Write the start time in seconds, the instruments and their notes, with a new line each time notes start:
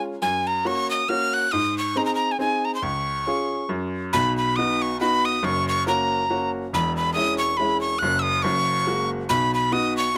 Already playing: upright piano G#3 C#4 F4
0.22 upright piano F#2, tin whistle G#5
0.47 tin whistle A#5
0.65 upright piano A#3 C#4 F#4, tin whistle C#6
0.90 tin whistle D#6
1.08 upright piano A#3 C#4 F#4, tin whistle F6
1.33 tin whistle F#6
1.52 upright piano G#2, tin whistle D#6
1.78 tin whistle C#6
1.96 upright piano C4 D#4 G#4, tin whistle A#5
2.05 tin whistle A#5
2.15 tin whistle A#5
2.31 tin whistle G#5
2.39 upright piano C4 D#4 G#4, tin whistle G#5
2.65 tin whistle A#5
2.75 tin whistle C6
2.82 upright piano C#2, tin whistle C#6
3.26 upright piano C#4 F4 G#4
3.69 upright piano F#2
4.13 upright piano B1 B2, tin whistle B5
4.37 tin whistle B5
4.56 upright piano B3 D#4 F#4, tin whistle D#6
4.82 tin whistle C#6
5.00 upright piano B3 D#4 F#4, tin whistle B5
5.25 tin whistle D#6
5.43 upright piano F#1 F#2, tin whistle C#6
5.68 tin whistle C#6
5.87 upright piano A#3 C#4 F#4, tin whistle A#5
6.30 upright piano A#3 C#4 F#4
6.73 upright piano E1 E2, tin whistle B5
6.96 tin whistle B5
7.13 upright piano G#3 C#4 E4, tin whistle D#6
7.38 tin whistle C#6
7.57 upright piano G#3 C#4 E4, tin whistle B5
7.81 tin whistle C#6
7.99 upright piano F#1, tin whistle F#6
8.03 upright piano F#2
8.19 tin whistle D#6 E6
8.42 upright piano F#1 F#2, tin whistle C#6
8.87 upright piano G#3 A#3 F#4
9.29 upright piano B1 B2, tin whistle B5
9.54 tin whistle B5
9.71 upright piano B3 D#4 F#4, tin whistle D#6
9.97 tin whistle C#6
10.14 upright piano B3 D#4